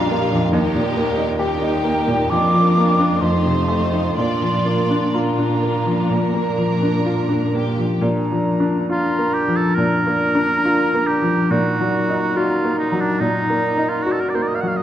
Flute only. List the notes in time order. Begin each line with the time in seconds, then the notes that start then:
Already playing: A#5
1.39 G5
2.30 D6
3.21 C6
4.16 C6
5.14 A#5
8.02 A#5
8.91 A#5
9.77 A#5
11.51 A#5
13.21 A#5